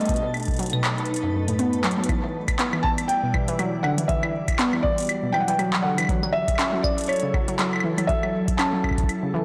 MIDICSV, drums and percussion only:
0, 0, Header, 1, 2, 480
1, 0, Start_track
1, 0, Tempo, 500000
1, 87, Time_signature, 4, 2, 24, 8
1, 9070, End_track
2, 0, Start_track
2, 0, Title_t, "Drums"
2, 7, Note_on_c, 9, 42, 37
2, 52, Note_off_c, 9, 42, 0
2, 52, Note_on_c, 9, 42, 33
2, 87, Note_off_c, 9, 42, 0
2, 87, Note_on_c, 9, 36, 95
2, 87, Note_on_c, 9, 42, 66
2, 132, Note_off_c, 9, 42, 0
2, 132, Note_on_c, 9, 42, 21
2, 154, Note_off_c, 9, 42, 0
2, 154, Note_on_c, 9, 42, 64
2, 168, Note_off_c, 9, 42, 0
2, 168, Note_on_c, 9, 42, 17
2, 183, Note_off_c, 9, 36, 0
2, 264, Note_off_c, 9, 42, 0
2, 328, Note_on_c, 9, 42, 17
2, 328, Note_on_c, 9, 75, 39
2, 354, Note_off_c, 9, 42, 0
2, 354, Note_on_c, 9, 42, 20
2, 381, Note_off_c, 9, 42, 0
2, 381, Note_on_c, 9, 42, 23
2, 409, Note_off_c, 9, 42, 0
2, 409, Note_on_c, 9, 42, 28
2, 424, Note_off_c, 9, 75, 0
2, 436, Note_off_c, 9, 42, 0
2, 436, Note_on_c, 9, 42, 31
2, 461, Note_on_c, 9, 36, 82
2, 463, Note_off_c, 9, 42, 0
2, 463, Note_on_c, 9, 42, 24
2, 489, Note_off_c, 9, 42, 0
2, 489, Note_on_c, 9, 42, 27
2, 515, Note_off_c, 9, 42, 0
2, 515, Note_on_c, 9, 42, 31
2, 542, Note_off_c, 9, 42, 0
2, 542, Note_on_c, 9, 42, 35
2, 557, Note_off_c, 9, 36, 0
2, 568, Note_off_c, 9, 42, 0
2, 568, Note_on_c, 9, 42, 68
2, 602, Note_off_c, 9, 42, 0
2, 602, Note_on_c, 9, 42, 43
2, 635, Note_off_c, 9, 42, 0
2, 635, Note_on_c, 9, 42, 47
2, 669, Note_off_c, 9, 42, 0
2, 669, Note_on_c, 9, 42, 50
2, 702, Note_on_c, 9, 75, 55
2, 765, Note_off_c, 9, 42, 0
2, 798, Note_off_c, 9, 75, 0
2, 808, Note_on_c, 9, 39, 113
2, 808, Note_on_c, 9, 42, 37
2, 808, Note_on_c, 9, 75, 55
2, 904, Note_off_c, 9, 39, 0
2, 904, Note_off_c, 9, 42, 0
2, 904, Note_off_c, 9, 75, 0
2, 943, Note_on_c, 9, 42, 23
2, 1013, Note_off_c, 9, 42, 0
2, 1013, Note_on_c, 9, 42, 32
2, 1094, Note_off_c, 9, 42, 0
2, 1094, Note_on_c, 9, 42, 41
2, 1115, Note_off_c, 9, 42, 0
2, 1115, Note_on_c, 9, 42, 65
2, 1211, Note_off_c, 9, 42, 0
2, 1422, Note_on_c, 9, 42, 55
2, 1518, Note_off_c, 9, 42, 0
2, 1527, Note_on_c, 9, 42, 69
2, 1623, Note_off_c, 9, 42, 0
2, 1661, Note_on_c, 9, 42, 39
2, 1757, Note_off_c, 9, 42, 0
2, 1767, Note_on_c, 9, 39, 114
2, 1767, Note_on_c, 9, 42, 51
2, 1835, Note_off_c, 9, 42, 0
2, 1835, Note_on_c, 9, 42, 51
2, 1863, Note_off_c, 9, 39, 0
2, 1931, Note_off_c, 9, 42, 0
2, 1955, Note_on_c, 9, 42, 68
2, 2007, Note_on_c, 9, 36, 107
2, 2008, Note_off_c, 9, 42, 0
2, 2008, Note_on_c, 9, 42, 56
2, 2008, Note_on_c, 9, 75, 53
2, 2103, Note_off_c, 9, 36, 0
2, 2104, Note_off_c, 9, 42, 0
2, 2104, Note_off_c, 9, 75, 0
2, 2382, Note_on_c, 9, 36, 85
2, 2382, Note_on_c, 9, 42, 72
2, 2382, Note_on_c, 9, 75, 83
2, 2478, Note_off_c, 9, 36, 0
2, 2478, Note_off_c, 9, 42, 0
2, 2478, Note_off_c, 9, 75, 0
2, 2487, Note_on_c, 9, 39, 120
2, 2487, Note_on_c, 9, 42, 60
2, 2583, Note_off_c, 9, 39, 0
2, 2583, Note_off_c, 9, 42, 0
2, 2621, Note_on_c, 9, 75, 56
2, 2717, Note_off_c, 9, 75, 0
2, 2727, Note_on_c, 9, 36, 110
2, 2823, Note_off_c, 9, 36, 0
2, 2862, Note_on_c, 9, 42, 70
2, 2862, Note_on_c, 9, 75, 55
2, 2958, Note_off_c, 9, 42, 0
2, 2958, Note_off_c, 9, 75, 0
2, 2967, Note_on_c, 9, 42, 57
2, 3063, Note_off_c, 9, 42, 0
2, 3207, Note_on_c, 9, 36, 115
2, 3207, Note_on_c, 9, 75, 81
2, 3303, Note_off_c, 9, 36, 0
2, 3303, Note_off_c, 9, 75, 0
2, 3342, Note_on_c, 9, 42, 71
2, 3438, Note_off_c, 9, 42, 0
2, 3447, Note_on_c, 9, 42, 55
2, 3447, Note_on_c, 9, 75, 58
2, 3543, Note_off_c, 9, 42, 0
2, 3543, Note_off_c, 9, 75, 0
2, 3687, Note_on_c, 9, 75, 54
2, 3783, Note_off_c, 9, 75, 0
2, 3822, Note_on_c, 9, 42, 75
2, 3918, Note_off_c, 9, 42, 0
2, 3927, Note_on_c, 9, 36, 110
2, 3928, Note_on_c, 9, 42, 59
2, 4023, Note_off_c, 9, 36, 0
2, 4024, Note_off_c, 9, 42, 0
2, 4062, Note_on_c, 9, 75, 80
2, 4158, Note_off_c, 9, 75, 0
2, 4301, Note_on_c, 9, 36, 86
2, 4302, Note_on_c, 9, 42, 70
2, 4302, Note_on_c, 9, 75, 52
2, 4323, Note_off_c, 9, 75, 0
2, 4323, Note_on_c, 9, 75, 42
2, 4344, Note_off_c, 9, 75, 0
2, 4344, Note_on_c, 9, 75, 35
2, 4365, Note_off_c, 9, 75, 0
2, 4365, Note_on_c, 9, 75, 28
2, 4386, Note_off_c, 9, 75, 0
2, 4386, Note_on_c, 9, 75, 23
2, 4397, Note_off_c, 9, 36, 0
2, 4398, Note_off_c, 9, 42, 0
2, 4408, Note_on_c, 9, 39, 123
2, 4408, Note_on_c, 9, 42, 58
2, 4482, Note_off_c, 9, 75, 0
2, 4504, Note_off_c, 9, 39, 0
2, 4504, Note_off_c, 9, 42, 0
2, 4542, Note_on_c, 9, 75, 54
2, 4638, Note_off_c, 9, 75, 0
2, 4647, Note_on_c, 9, 36, 104
2, 4743, Note_off_c, 9, 36, 0
2, 4782, Note_on_c, 9, 42, 66
2, 4803, Note_off_c, 9, 42, 0
2, 4803, Note_on_c, 9, 42, 56
2, 4824, Note_off_c, 9, 42, 0
2, 4824, Note_on_c, 9, 42, 44
2, 4845, Note_off_c, 9, 42, 0
2, 4845, Note_on_c, 9, 42, 37
2, 4866, Note_off_c, 9, 42, 0
2, 4866, Note_on_c, 9, 42, 29
2, 4887, Note_off_c, 9, 42, 0
2, 4887, Note_on_c, 9, 42, 55
2, 4887, Note_on_c, 9, 75, 80
2, 4983, Note_off_c, 9, 42, 0
2, 4983, Note_off_c, 9, 75, 0
2, 5127, Note_on_c, 9, 75, 53
2, 5223, Note_off_c, 9, 75, 0
2, 5262, Note_on_c, 9, 42, 72
2, 5358, Note_off_c, 9, 42, 0
2, 5367, Note_on_c, 9, 42, 58
2, 5367, Note_on_c, 9, 75, 55
2, 5463, Note_off_c, 9, 42, 0
2, 5463, Note_off_c, 9, 75, 0
2, 5502, Note_on_c, 9, 39, 127
2, 5598, Note_off_c, 9, 39, 0
2, 5743, Note_on_c, 9, 42, 73
2, 5743, Note_on_c, 9, 75, 78
2, 5763, Note_off_c, 9, 75, 0
2, 5763, Note_on_c, 9, 75, 65
2, 5785, Note_off_c, 9, 75, 0
2, 5785, Note_on_c, 9, 75, 52
2, 5806, Note_off_c, 9, 75, 0
2, 5806, Note_on_c, 9, 75, 44
2, 5828, Note_off_c, 9, 75, 0
2, 5828, Note_on_c, 9, 75, 36
2, 5839, Note_off_c, 9, 42, 0
2, 5847, Note_on_c, 9, 36, 113
2, 5849, Note_on_c, 9, 42, 55
2, 5924, Note_off_c, 9, 75, 0
2, 5943, Note_off_c, 9, 36, 0
2, 5945, Note_off_c, 9, 42, 0
2, 5983, Note_on_c, 9, 75, 53
2, 6079, Note_off_c, 9, 75, 0
2, 6221, Note_on_c, 9, 36, 91
2, 6223, Note_on_c, 9, 42, 70
2, 6223, Note_on_c, 9, 75, 23
2, 6293, Note_off_c, 9, 75, 0
2, 6293, Note_on_c, 9, 75, 32
2, 6317, Note_off_c, 9, 36, 0
2, 6319, Note_off_c, 9, 42, 0
2, 6328, Note_on_c, 9, 39, 127
2, 6328, Note_on_c, 9, 42, 59
2, 6373, Note_off_c, 9, 75, 0
2, 6373, Note_on_c, 9, 75, 41
2, 6424, Note_off_c, 9, 39, 0
2, 6424, Note_off_c, 9, 42, 0
2, 6469, Note_off_c, 9, 75, 0
2, 6567, Note_on_c, 9, 36, 111
2, 6568, Note_on_c, 9, 75, 77
2, 6663, Note_off_c, 9, 36, 0
2, 6664, Note_off_c, 9, 75, 0
2, 6702, Note_on_c, 9, 42, 61
2, 6728, Note_off_c, 9, 42, 0
2, 6728, Note_on_c, 9, 42, 52
2, 6755, Note_off_c, 9, 42, 0
2, 6755, Note_on_c, 9, 42, 45
2, 6781, Note_off_c, 9, 42, 0
2, 6781, Note_on_c, 9, 42, 37
2, 6807, Note_off_c, 9, 42, 0
2, 6807, Note_on_c, 9, 42, 29
2, 6807, Note_on_c, 9, 75, 52
2, 6841, Note_off_c, 9, 42, 0
2, 6841, Note_on_c, 9, 42, 32
2, 6875, Note_off_c, 9, 42, 0
2, 6875, Note_on_c, 9, 42, 39
2, 6903, Note_off_c, 9, 75, 0
2, 6908, Note_off_c, 9, 42, 0
2, 6908, Note_on_c, 9, 42, 43
2, 7004, Note_off_c, 9, 42, 0
2, 7047, Note_on_c, 9, 36, 126
2, 7048, Note_on_c, 9, 75, 54
2, 7143, Note_off_c, 9, 36, 0
2, 7144, Note_off_c, 9, 75, 0
2, 7182, Note_on_c, 9, 42, 72
2, 7278, Note_off_c, 9, 42, 0
2, 7288, Note_on_c, 9, 39, 127
2, 7288, Note_on_c, 9, 42, 56
2, 7384, Note_off_c, 9, 39, 0
2, 7384, Note_off_c, 9, 42, 0
2, 7422, Note_on_c, 9, 75, 38
2, 7447, Note_off_c, 9, 75, 0
2, 7447, Note_on_c, 9, 75, 49
2, 7492, Note_off_c, 9, 75, 0
2, 7492, Note_on_c, 9, 75, 65
2, 7588, Note_off_c, 9, 75, 0
2, 7662, Note_on_c, 9, 42, 72
2, 7662, Note_on_c, 9, 75, 53
2, 7758, Note_off_c, 9, 42, 0
2, 7758, Note_off_c, 9, 75, 0
2, 7766, Note_on_c, 9, 36, 111
2, 7768, Note_on_c, 9, 42, 50
2, 7862, Note_off_c, 9, 36, 0
2, 7864, Note_off_c, 9, 42, 0
2, 7903, Note_on_c, 9, 75, 48
2, 7999, Note_off_c, 9, 75, 0
2, 8140, Note_on_c, 9, 36, 88
2, 8142, Note_on_c, 9, 42, 69
2, 8236, Note_off_c, 9, 36, 0
2, 8238, Note_off_c, 9, 42, 0
2, 8248, Note_on_c, 9, 39, 127
2, 8248, Note_on_c, 9, 42, 53
2, 8248, Note_on_c, 9, 75, 81
2, 8344, Note_off_c, 9, 39, 0
2, 8344, Note_off_c, 9, 42, 0
2, 8344, Note_off_c, 9, 75, 0
2, 8486, Note_on_c, 9, 36, 52
2, 8488, Note_on_c, 9, 75, 46
2, 8533, Note_off_c, 9, 75, 0
2, 8533, Note_on_c, 9, 75, 39
2, 8553, Note_off_c, 9, 36, 0
2, 8553, Note_on_c, 9, 36, 63
2, 8568, Note_off_c, 9, 75, 0
2, 8568, Note_on_c, 9, 75, 31
2, 8621, Note_off_c, 9, 36, 0
2, 8621, Note_on_c, 9, 36, 82
2, 8622, Note_on_c, 9, 42, 63
2, 8664, Note_off_c, 9, 75, 0
2, 8673, Note_off_c, 9, 36, 0
2, 8673, Note_on_c, 9, 36, 90
2, 8718, Note_off_c, 9, 42, 0
2, 8728, Note_on_c, 9, 42, 52
2, 8728, Note_on_c, 9, 75, 49
2, 8769, Note_off_c, 9, 36, 0
2, 8824, Note_off_c, 9, 42, 0
2, 8824, Note_off_c, 9, 75, 0
2, 9070, End_track
0, 0, End_of_file